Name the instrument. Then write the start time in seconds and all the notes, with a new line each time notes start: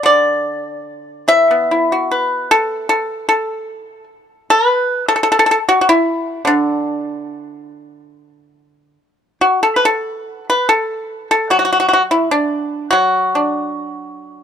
pipa
0.03 D3 D5
1.28 E3 E5
1.51 B3
1.71 E4
1.92 F#4
2.11 B4
2.51 A4
2.89 A4
3.29 A4
4.50 B4
5.08 A4
5.16 A4
5.23 A4
5.32 A4
5.39 A4
5.46 A4
5.51 A4
5.69 F#4
5.81 F#4
5.89 E4
6.45 D3 D4
9.41 F#4
9.63 A4
9.76 B4
9.85 A4
10.50 B4
10.69 A4
11.31 A4
11.50 F#3 F#4
11.59 F#4
11.65 F#4
11.73 F#4
11.80 F#4
11.89 F#4
11.93 F#4
12.11 E4
12.31 D4
12.91 F#3 F#4
13.35 D4